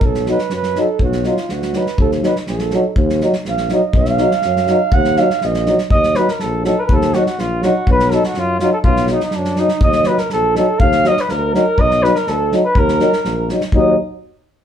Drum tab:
SD |-oooooo-|-ooooooo|-oooooo-|-oooooo-|
BD |o-------|o-------|o-------|o-------|

SD |-oooooo-|-ooooooo|-oooo-o-|-oooo-o-|
BD |o-------|o-------|o-------|o-------|

SD |-oooo-o-|-ooooooo|-oooo-o-|-oooo-o-|
BD |o-------|o-------|o-------|o-------|

SD |-oooo-o-|-oooo-oo|--------|
BD |o-------|o-------|o-------|